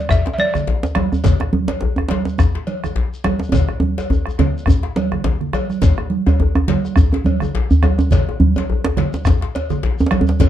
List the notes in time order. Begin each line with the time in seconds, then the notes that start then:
Already playing: D5
0.09 E5, bombo rim, bombo low, djembe tone, djembe bass, shekere
0.25 bombo rim, djembe slap
0.34 E5
0.38 D5, cowbell, high conga
0.54 bombo rim, djembe tone, high conga, low conga, shekere
0.67 djembe slap, djembe bass
0.83 djembe slap, shekere
0.95 bombo rim, cowbell, djembe slap, high conga, djembe tone
1.12 bombo rim, djembe slap, djembe tone, shekere
1.24 bombo low, cowbell, djembe slap, low conga, djembe bass, shekere
1.40 bombo rim, djembe slap, djembe tone
1.53 djembe slap, high conga, djembe tone
1.68 cowbell, djembe slap
1.81 djembe slap, djembe bass
1.96 bombo rim, djembe tone
1.99 djembe tone
2.08 bombo rim, cowbell, djembe slap, high conga
2.11 djembe slap
2.25 djembe slap, shekere
2.38 bombo rim, bombo low, djembe tone, djembe bass, shekere
2.55 bombo rim, djembe slap
2.67 cowbell, high conga
2.84 bombo rim, high conga, djembe tone, low conga, shekere
2.96 djembe slap, djembe bass
3.14 shekere
3.24 bombo rim, cowbell, djembe slap, high conga, djembe tone
3.39 bombo rim, djembe slap, shekere
3.52 bombo low, cowbell, djembe slap, djembe tone, djembe bass, low conga, shekere
3.68 bombo rim, djembe slap, djembe tone
3.80 djembe slap, djembe tone, high conga
3.98 cowbell, djembe slap, shekere
4.10 djembe tone, djembe bass, shekere
4.26 bombo rim, djembe tone, high conga, shekere
4.38 bombo rim, cowbell, djembe slap, djembe tone, high conga, low conga
4.58 shekere
4.66 bombo rim, bombo low, djembe tone, djembe bass, shekere
4.83 bombo rim, djembe slap
4.96 cowbell, djembe slap, high conga
5.12 bombo rim, djembe slap, djembe tone, low conga
5.24 djembe slap, djembe bass, low conga
5.41 bombo rim, low conga
5.53 bombo rim, cowbell, djembe tone, high conga
5.69 bombo rim, high conga, shekere
5.82 bombo low, cowbell, djembe slap, djembe tone, low conga, djembe bass, shekere
5.98 bombo rim, djembe slap, djembe tone
6.10 djembe slap, high conga
6.26 cowbell, djembe slap, djembe bass
6.40 djembe tone, djembe bass
6.55 bombo rim, djembe tone
6.68 bombo rim, cowbell, djembe slap, high conga, low conga
6.85 djembe slap, shekere
6.96 bombo rim, bombo low, djembe tone, djembe bass, shekere
7.12 bombo rim, djembe slap, djembe tone
7.24 cowbell, high conga, djembe tone
7.40 bombo rim, high conga, djembe tone, low conga, shekere
7.55 djembe slap, djembe bass
7.71 djembe bass, shekere
7.83 bombo rim, cowbell, djembe slap, djembe tone, high conga
7.98 bombo rim, djembe slap, djembe tone, shekere
8.11 bombo low, cowbell, djembe slap, low conga, djembe bass, shekere
8.29 djembe slap, djembe tone
8.40 djembe slap, high conga, djembe bass
8.56 cowbell, djembe slap, djembe tone
8.70 djembe bass
8.84 bombo rim, djembe slap, djembe tone
8.97 bombo rim, cowbell, djembe slap, high conga, low conga
9.13 djembe slap, shekere
9.25 bombo rim, bombo low, djembe slap, djembe tone, djembe bass, shekere
9.41 bombo rim, djembe slap
9.55 cowbell, djembe slap
9.70 djembe tone, high conga, low conga, shekere
9.83 djembe slap, djembe bass
9.99 djembe tone, shekere
10.06 djembe slap
10.11 bombo rim, cowbell, djembe slap, high conga, djembe tone
10.21 djembe tone
10.27 djembe slap, shekere
10.40 bombo low, cowbell, djembe slap, djembe tone, low conga, djembe bass, shekere